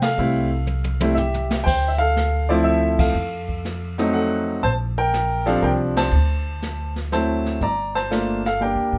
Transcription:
Already playing: upright bass C3
0.02 grand piano A4 F5, snare, ride
0.17 upright bass C2, grand piano G3 A3 C4 E4, brush sweep
0.67 high tom
0.84 high tom
1.01 grand piano G3 A3 C4 E4, high tom
1.15 grand piano G4 E5, floor tom, hi-hat pedal
1.34 floor tom
1.51 snare
1.64 upright bass D2, grand piano C5 G5, brush sweep, kick, crash
1.88 grand piano E5
1.98 grand piano A4 F5
2.16 snare, hi-hat pedal
2.49 grand piano F3 A3 C4 E4 F4 D5
2.64 grand piano A4 E5
2.99 grand piano A4 F5, kick, ride
3.15 upright bass F2, brush sweep
3.49 kick
3.65 snare, hi-hat pedal
3.98 grand piano F#3 A3 C4 D#4, snare
4.14 grand piano A4 F#5
4.63 upright bass A#1, grand piano C5 A5, brush sweep, kick
4.98 grand piano A#4 G5
5.14 snare, hi-hat pedal
5.46 grand piano F3 G3 C4 D4 A4 F5, snare
5.62 upright bass C2, grand piano A#4 G5
5.96 grand piano C5 A5, snare, ride
6.11 upright bass D2, brush sweep
6.62 snare, hi-hat pedal
6.96 snare
7.12 grand piano F#3 A3 C4 E4 C5 A5, snare, hi-hat pedal
7.46 snare
7.61 upright bass G1, grand piano D5 A#5, brush sweep, kick
7.95 grand piano C5 A5, snare
8.11 grand piano A3 A#3 D4 F4, snare, hi-hat pedal
8.45 grand piano A4 F5, snare
8.60 grand piano G3 A#3 D4 G4 A#4 G5
8.75 upright bass D2
8.92 upright bass G#2

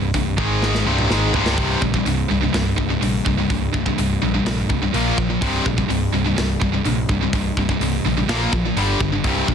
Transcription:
Already playing: picked electric bass C1
0.14 picked electric bass C1, distorted electric guitar C2 G2, kick, open hi-hat
0.38 picked electric bass G#1, distorted electric guitar G#2 D#3 G#3, kick
0.62 snare
0.75 snare
0.86 picked electric bass C1, distorted electric guitar C2 G2 C3
0.98 mid tom
1.10 picked electric bass G#1, distorted electric guitar G#2 D#3 G#3, snare
1.34 picked electric bass C1, distorted electric guitar C2 G2 C3, floor tom
1.46 snare
1.58 picked electric bass C1, distorted electric guitar C2 G2 C3, kick, open hi-hat
1.82 picked electric bass A#1, distorted electric guitar C2 G2, kick
1.94 distorted electric guitar C2 G2, kick
2.06 picked electric bass C1, distorted electric guitar C2 G2, open hi-hat
2.30 picked electric bass C1, distorted electric guitar C2 G2
2.43 distorted electric guitar C2 G2
2.54 picked electric bass C1, distorted electric guitar C2 G2, snare, open hi-hat
2.78 picked electric bass C1, distorted electric guitar C2 G2, kick
2.90 distorted electric guitar C2 G2
3.02 picked electric bass A#1, distorted electric guitar C2 G2, open hi-hat
3.26 picked electric bass C1, distorted electric guitar C2 G2, kick
3.38 distorted electric guitar C2 G2
3.50 picked electric bass C1, distorted electric guitar C2 G2, kick, open hi-hat
3.74 picked electric bass C1, distorted electric guitar C2 G2, kick
3.86 distorted electric guitar C2 G2, kick
3.98 picked electric bass C1, distorted electric guitar C2 G2, open hi-hat
4.22 picked electric bass A#1, distorted electric guitar C2 G2
4.34 distorted electric guitar C2 G2
4.46 picked electric bass A#1, distorted electric guitar C2 G2, snare, open hi-hat
4.69 picked electric bass C1, distorted electric guitar C2 G2, kick
4.82 distorted electric guitar C2 G2
4.94 picked electric bass A#1, distorted electric guitar A#2 F3 A#3, open hi-hat
5.18 picked electric bass A#1, distorted electric guitar A#2 F3, kick
5.29 distorted electric guitar A#2 F3
5.42 picked electric bass C1, distorted electric guitar C2 G2 C3, kick, open hi-hat
5.65 picked electric bass A#1, distorted electric guitar C2 G2, kick
5.78 distorted electric guitar C2 G2, kick
5.90 picked electric bass C1, distorted electric guitar C2 G2, open hi-hat
6.14 picked electric bass C1, distorted electric guitar C2 G2
6.26 distorted electric guitar C2 G2
6.38 picked electric bass C1, distorted electric guitar C2 G2, snare, open hi-hat
6.62 picked electric bass C1, distorted electric guitar C2 G2, kick
6.74 distorted electric guitar C2 G2
6.85 picked electric bass A#1, distorted electric guitar C2 G2, open hi-hat
7.09 picked electric bass C1, distorted electric guitar C2 G2, kick
7.23 distorted electric guitar C2 G2
7.33 picked electric bass C1, distorted electric guitar C2 G2, kick, open hi-hat
7.57 picked electric bass C1, distorted electric guitar C2 G2, kick
7.69 distorted electric guitar C2 G2, kick
7.80 picked electric bass C1, distorted electric guitar C2 G2, open hi-hat
8.06 picked electric bass A#1, distorted electric guitar C2 G2
8.17 distorted electric guitar C2 G2
8.29 picked electric bass A#1, distorted electric guitar A#2 F3 A#3, snare, open hi-hat
8.53 picked electric bass A#1, distorted electric guitar A#2 F3, kick
8.65 distorted electric guitar A#2 F3
8.76 picked electric bass G1, distorted electric guitar G2 D3 G3, open hi-hat
9.00 picked electric bass G1, distorted electric guitar G2 D3, kick
9.12 distorted electric guitar G2 D3
9.24 picked electric bass C1, distorted electric guitar C2 G2 C3, kick, open hi-hat
9.48 picked electric bass A#1, distorted electric guitar C2 G2, kick

